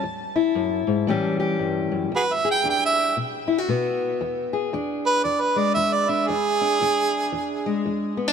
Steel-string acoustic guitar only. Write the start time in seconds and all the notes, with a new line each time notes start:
0.04 E2
0.36 E4
0.55 F#2
0.87 G#2
1.07 A2 E3 G3 C#4 G4
1.40 G4
1.59 G2
1.92 F#2
2.12 E2
2.45 G#4
2.64 E2 D4
3.17 B2
3.48 E4
3.58 F#4
3.69 B2 B3
4.21 E2
4.53 G#4
4.73 E2 D4
5.25 E2
5.56 G#3
5.77 E2
6.09 D4
6.29 E2
6.61 D4
6.81 E2 D4
7.32 E2
7.66 G#3
7.86 E2
8.17 B3
8.28 D4